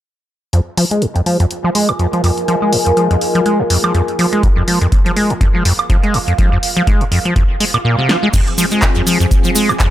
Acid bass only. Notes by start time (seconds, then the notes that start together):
0.53 F2
0.77 F3
0.91 G#3
1.02 F2
1.16 F2
1.26 F3
1.40 F2
1.64 F3
1.75 G#3
1.89 F2
1.99 F2
2.13 F3
2.24 F2
2.48 F3
2.62 G#3
2.73 F2
2.86 F2
2.97 F3
3.11 F2
3.35 F3
3.46 G#3
3.59 F2
3.70 F2
3.84 F3
3.94 F2
4.19 F3
4.33 G#3
4.43 F2
4.57 F2
4.68 F3
4.81 F2
5.06 F3
5.17 G#3
5.30 F2
5.41 F2
5.55 F3
5.65 F2
5.90 F3
6.03 G#3
6.14 F2
6.28 F2
6.38 F3
6.52 F2
6.77 F3
6.87 G#3
7.01 F2
7.12 F2
7.25 F3
7.36 F2
7.60 G#3
7.74 A#2
7.85 A#2
7.98 C3
8.09 F3
8.23 G#3
8.33 F2
8.58 F3
8.72 G#3
8.82 F2
8.96 F2
9.07 F3
9.20 F2
9.45 F3
9.55 G#3
9.69 F2
9.80 F2